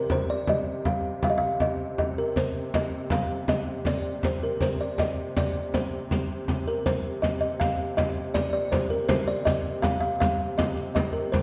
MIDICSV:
0, 0, Header, 1, 5, 480
1, 0, Start_track
1, 0, Key_signature, -3, "minor"
1, 0, Tempo, 374298
1, 138, Time_signature, 3, 2, 24, 8
1, 14651, End_track
2, 0, Start_track
2, 0, Title_t, "Kalimba"
2, 0, Program_c, 0, 108
2, 0, Note_on_c, 0, 70, 81
2, 149, Note_on_c, 0, 72, 88
2, 152, Note_off_c, 0, 70, 0
2, 368, Note_off_c, 0, 72, 0
2, 383, Note_on_c, 0, 74, 85
2, 606, Note_off_c, 0, 74, 0
2, 633, Note_on_c, 0, 75, 88
2, 1102, Note_on_c, 0, 77, 83
2, 1123, Note_off_c, 0, 75, 0
2, 1578, Note_off_c, 0, 77, 0
2, 1593, Note_on_c, 0, 77, 96
2, 1663, Note_on_c, 0, 75, 79
2, 1670, Note_off_c, 0, 77, 0
2, 1754, Note_off_c, 0, 75, 0
2, 1767, Note_on_c, 0, 77, 88
2, 2049, Note_off_c, 0, 77, 0
2, 2071, Note_on_c, 0, 75, 86
2, 2536, Note_off_c, 0, 75, 0
2, 2551, Note_on_c, 0, 75, 83
2, 2797, Note_off_c, 0, 75, 0
2, 2799, Note_on_c, 0, 70, 76
2, 3039, Note_on_c, 0, 72, 79
2, 3041, Note_off_c, 0, 70, 0
2, 3526, Note_on_c, 0, 75, 81
2, 3530, Note_off_c, 0, 72, 0
2, 3966, Note_off_c, 0, 75, 0
2, 3995, Note_on_c, 0, 77, 77
2, 4474, Note_on_c, 0, 75, 79
2, 4489, Note_off_c, 0, 77, 0
2, 4921, Note_off_c, 0, 75, 0
2, 4961, Note_on_c, 0, 74, 79
2, 5405, Note_off_c, 0, 74, 0
2, 5451, Note_on_c, 0, 72, 75
2, 5685, Note_on_c, 0, 70, 75
2, 5690, Note_off_c, 0, 72, 0
2, 5918, Note_on_c, 0, 72, 81
2, 5927, Note_off_c, 0, 70, 0
2, 6140, Note_off_c, 0, 72, 0
2, 6164, Note_on_c, 0, 74, 70
2, 6383, Note_off_c, 0, 74, 0
2, 6403, Note_on_c, 0, 75, 80
2, 6846, Note_off_c, 0, 75, 0
2, 6892, Note_on_c, 0, 74, 78
2, 7366, Note_on_c, 0, 72, 73
2, 7378, Note_off_c, 0, 74, 0
2, 8269, Note_off_c, 0, 72, 0
2, 8561, Note_on_c, 0, 70, 76
2, 8796, Note_on_c, 0, 72, 92
2, 8805, Note_off_c, 0, 70, 0
2, 9262, Note_on_c, 0, 75, 83
2, 9290, Note_off_c, 0, 72, 0
2, 9482, Note_off_c, 0, 75, 0
2, 9498, Note_on_c, 0, 75, 86
2, 9743, Note_on_c, 0, 77, 88
2, 9753, Note_off_c, 0, 75, 0
2, 10194, Note_off_c, 0, 77, 0
2, 10223, Note_on_c, 0, 75, 88
2, 10699, Note_on_c, 0, 74, 86
2, 10722, Note_off_c, 0, 75, 0
2, 10923, Note_off_c, 0, 74, 0
2, 10939, Note_on_c, 0, 74, 86
2, 11179, Note_on_c, 0, 72, 88
2, 11192, Note_off_c, 0, 74, 0
2, 11408, Note_off_c, 0, 72, 0
2, 11416, Note_on_c, 0, 70, 78
2, 11645, Note_off_c, 0, 70, 0
2, 11651, Note_on_c, 0, 72, 99
2, 11895, Note_on_c, 0, 74, 88
2, 11908, Note_off_c, 0, 72, 0
2, 12123, Note_on_c, 0, 75, 96
2, 12149, Note_off_c, 0, 74, 0
2, 12580, Note_off_c, 0, 75, 0
2, 12598, Note_on_c, 0, 77, 91
2, 12815, Note_off_c, 0, 77, 0
2, 12831, Note_on_c, 0, 77, 88
2, 12946, Note_off_c, 0, 77, 0
2, 13085, Note_on_c, 0, 77, 96
2, 13539, Note_off_c, 0, 77, 0
2, 13564, Note_on_c, 0, 75, 81
2, 14025, Note_off_c, 0, 75, 0
2, 14040, Note_on_c, 0, 75, 81
2, 14270, Note_on_c, 0, 70, 70
2, 14298, Note_off_c, 0, 75, 0
2, 14385, Note_off_c, 0, 70, 0
2, 14519, Note_on_c, 0, 72, 78
2, 14651, Note_off_c, 0, 72, 0
2, 14651, End_track
3, 0, Start_track
3, 0, Title_t, "Pipe organ"
3, 0, Program_c, 1, 19
3, 0, Note_on_c, 1, 48, 56
3, 3016, Note_off_c, 1, 48, 0
3, 3041, Note_on_c, 1, 48, 60
3, 8765, Note_off_c, 1, 48, 0
3, 8790, Note_on_c, 1, 48, 61
3, 14518, Note_off_c, 1, 48, 0
3, 14543, Note_on_c, 1, 48, 58
3, 14651, Note_off_c, 1, 48, 0
3, 14651, End_track
4, 0, Start_track
4, 0, Title_t, "Frame drum"
4, 125, Note_on_c, 9, 64, 83
4, 253, Note_off_c, 9, 64, 0
4, 607, Note_on_c, 9, 64, 77
4, 736, Note_off_c, 9, 64, 0
4, 855, Note_on_c, 9, 64, 27
4, 983, Note_off_c, 9, 64, 0
4, 1093, Note_on_c, 9, 64, 85
4, 1222, Note_off_c, 9, 64, 0
4, 1572, Note_on_c, 9, 64, 85
4, 1700, Note_off_c, 9, 64, 0
4, 1818, Note_on_c, 9, 64, 26
4, 1946, Note_off_c, 9, 64, 0
4, 2054, Note_on_c, 9, 64, 82
4, 2182, Note_off_c, 9, 64, 0
4, 2304, Note_on_c, 9, 64, 23
4, 2432, Note_off_c, 9, 64, 0
4, 2544, Note_on_c, 9, 64, 75
4, 2672, Note_off_c, 9, 64, 0
4, 3027, Note_on_c, 9, 64, 71
4, 3155, Note_off_c, 9, 64, 0
4, 3513, Note_on_c, 9, 64, 76
4, 3641, Note_off_c, 9, 64, 0
4, 3757, Note_on_c, 9, 64, 23
4, 3885, Note_off_c, 9, 64, 0
4, 3978, Note_on_c, 9, 64, 82
4, 4106, Note_off_c, 9, 64, 0
4, 4463, Note_on_c, 9, 64, 82
4, 4591, Note_off_c, 9, 64, 0
4, 4936, Note_on_c, 9, 64, 79
4, 5065, Note_off_c, 9, 64, 0
4, 5188, Note_on_c, 9, 64, 23
4, 5316, Note_off_c, 9, 64, 0
4, 5426, Note_on_c, 9, 64, 79
4, 5554, Note_off_c, 9, 64, 0
4, 5905, Note_on_c, 9, 64, 79
4, 6034, Note_off_c, 9, 64, 0
4, 6389, Note_on_c, 9, 64, 80
4, 6517, Note_off_c, 9, 64, 0
4, 6640, Note_on_c, 9, 64, 24
4, 6768, Note_off_c, 9, 64, 0
4, 6881, Note_on_c, 9, 64, 83
4, 7009, Note_off_c, 9, 64, 0
4, 7359, Note_on_c, 9, 64, 76
4, 7488, Note_off_c, 9, 64, 0
4, 7836, Note_on_c, 9, 64, 78
4, 7964, Note_off_c, 9, 64, 0
4, 8077, Note_on_c, 9, 64, 23
4, 8205, Note_off_c, 9, 64, 0
4, 8312, Note_on_c, 9, 64, 77
4, 8441, Note_off_c, 9, 64, 0
4, 8796, Note_on_c, 9, 64, 79
4, 8924, Note_off_c, 9, 64, 0
4, 9274, Note_on_c, 9, 64, 72
4, 9403, Note_off_c, 9, 64, 0
4, 9522, Note_on_c, 9, 64, 21
4, 9650, Note_off_c, 9, 64, 0
4, 9756, Note_on_c, 9, 64, 78
4, 9884, Note_off_c, 9, 64, 0
4, 10233, Note_on_c, 9, 64, 76
4, 10362, Note_off_c, 9, 64, 0
4, 10706, Note_on_c, 9, 64, 78
4, 10834, Note_off_c, 9, 64, 0
4, 10951, Note_on_c, 9, 64, 23
4, 11079, Note_off_c, 9, 64, 0
4, 11188, Note_on_c, 9, 64, 85
4, 11316, Note_off_c, 9, 64, 0
4, 11655, Note_on_c, 9, 64, 86
4, 11784, Note_off_c, 9, 64, 0
4, 12139, Note_on_c, 9, 64, 90
4, 12267, Note_off_c, 9, 64, 0
4, 12379, Note_on_c, 9, 64, 25
4, 12508, Note_off_c, 9, 64, 0
4, 12610, Note_on_c, 9, 64, 91
4, 12738, Note_off_c, 9, 64, 0
4, 13098, Note_on_c, 9, 64, 90
4, 13226, Note_off_c, 9, 64, 0
4, 13339, Note_on_c, 9, 64, 30
4, 13468, Note_off_c, 9, 64, 0
4, 13580, Note_on_c, 9, 64, 93
4, 13709, Note_off_c, 9, 64, 0
4, 13819, Note_on_c, 9, 64, 29
4, 13947, Note_off_c, 9, 64, 0
4, 14052, Note_on_c, 9, 64, 93
4, 14180, Note_off_c, 9, 64, 0
4, 14301, Note_on_c, 9, 64, 26
4, 14429, Note_off_c, 9, 64, 0
4, 14538, Note_on_c, 9, 64, 86
4, 14651, Note_off_c, 9, 64, 0
4, 14651, End_track
5, 0, Start_track
5, 0, Title_t, "Riq"
5, 3039, Note_on_c, 9, 54, 63
5, 3167, Note_off_c, 9, 54, 0
5, 3515, Note_on_c, 9, 54, 62
5, 3643, Note_off_c, 9, 54, 0
5, 3995, Note_on_c, 9, 54, 62
5, 4123, Note_off_c, 9, 54, 0
5, 4475, Note_on_c, 9, 54, 55
5, 4604, Note_off_c, 9, 54, 0
5, 4954, Note_on_c, 9, 54, 66
5, 5082, Note_off_c, 9, 54, 0
5, 5441, Note_on_c, 9, 54, 59
5, 5569, Note_off_c, 9, 54, 0
5, 5928, Note_on_c, 9, 54, 59
5, 6056, Note_off_c, 9, 54, 0
5, 6401, Note_on_c, 9, 54, 57
5, 6529, Note_off_c, 9, 54, 0
5, 6882, Note_on_c, 9, 54, 64
5, 7010, Note_off_c, 9, 54, 0
5, 7367, Note_on_c, 9, 54, 59
5, 7495, Note_off_c, 9, 54, 0
5, 7851, Note_on_c, 9, 54, 55
5, 7979, Note_off_c, 9, 54, 0
5, 8322, Note_on_c, 9, 54, 49
5, 8450, Note_off_c, 9, 54, 0
5, 8567, Note_on_c, 9, 54, 17
5, 8695, Note_off_c, 9, 54, 0
5, 8801, Note_on_c, 9, 54, 58
5, 8929, Note_off_c, 9, 54, 0
5, 9285, Note_on_c, 9, 54, 62
5, 9414, Note_off_c, 9, 54, 0
5, 9761, Note_on_c, 9, 54, 61
5, 9889, Note_off_c, 9, 54, 0
5, 10232, Note_on_c, 9, 54, 62
5, 10360, Note_off_c, 9, 54, 0
5, 10707, Note_on_c, 9, 54, 60
5, 10835, Note_off_c, 9, 54, 0
5, 11188, Note_on_c, 9, 54, 59
5, 11317, Note_off_c, 9, 54, 0
5, 11658, Note_on_c, 9, 54, 60
5, 11786, Note_off_c, 9, 54, 0
5, 12144, Note_on_c, 9, 54, 61
5, 12272, Note_off_c, 9, 54, 0
5, 12619, Note_on_c, 9, 54, 63
5, 12748, Note_off_c, 9, 54, 0
5, 13101, Note_on_c, 9, 54, 61
5, 13229, Note_off_c, 9, 54, 0
5, 13575, Note_on_c, 9, 54, 65
5, 13703, Note_off_c, 9, 54, 0
5, 13813, Note_on_c, 9, 54, 21
5, 13941, Note_off_c, 9, 54, 0
5, 14058, Note_on_c, 9, 54, 57
5, 14186, Note_off_c, 9, 54, 0
5, 14535, Note_on_c, 9, 54, 54
5, 14651, Note_off_c, 9, 54, 0
5, 14651, End_track
0, 0, End_of_file